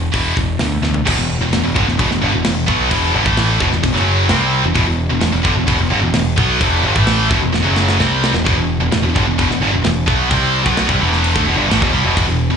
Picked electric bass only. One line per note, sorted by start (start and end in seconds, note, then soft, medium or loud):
0.14 0.32 E1 medium
0.37 0.55 E1 medium
0.59 0.77 D2 medium
0.82 1.00 D2 medium
1.07 1.16 E1 loud
1.17 1.39 E1 medium
1.39 1.51 E1 medium
1.53 1.63 E1 medium
1.64 1.75 E1 medium
1.76 1.86 G1 loud
1.87 1.98 E1 medium
1.99 2.10 E1 loud
2.10 2.21 E1 medium
2.23 2.33 G1 loud
2.34 2.44 E1 medium
2.46 2.67 E1 medium
2.68 2.90 B1 medium
2.91 3.13 E1 loud
3.14 3.25 G1 loud
3.26 3.58 A1 medium
3.61 3.71 E1 loud
3.71 3.82 E1 medium
3.84 3.94 E1 medium
3.95 4.27 F#1 medium
4.30 4.62 C2 medium
4.64 4.74 E1 medium
4.75 4.86 E1 medium
4.88 5.09 E1 medium
5.11 5.21 E1 medium
5.22 5.33 E1 medium
5.34 5.44 E1 medium
5.45 5.56 G1 loud
5.57 5.67 E1 medium
5.67 5.79 E1 loud
5.79 5.90 E1 medium
5.90 6.02 G1 loud
6.03 6.12 E1 medium
6.13 6.35 E1 medium
6.38 6.59 B1 medium
6.61 6.82 E1 medium
6.83 6.94 G1 loud
6.96 7.28 A1 medium
7.30 7.41 E1 loud
7.42 7.53 E1 medium
7.54 7.64 E1 medium
7.65 7.98 F#1 loud
8.00 8.32 C2 loud
8.33 8.45 E1 medium
8.47 8.55 E1 medium
8.56 8.78 E1 medium
8.80 8.91 E1 medium
8.91 9.02 E1 medium
9.02 9.14 E1 medium
9.16 9.26 G1 loud
9.27 9.38 E1 medium
9.39 9.49 E1 loud
9.49 9.61 E1 medium
9.61 9.72 G1 loud
9.74 9.84 E1 medium
9.85 10.07 E1 medium
10.07 10.29 B1 loud
10.31 10.64 C2 medium
10.66 10.88 B1 loud
10.89 11.00 C2 loud
11.01 11.33 E1 loud
11.36 11.45 D2 loud
11.45 11.56 E1 loud
11.57 11.68 G1 loud
11.69 11.80 A1 loud
11.82 11.93 E1 loud
11.93 12.04 C2 loud
12.04 12.16 E1 loud
12.17 12.27 E1 medium
12.28 12.50 E1 medium
12.52 12.57 E1 medium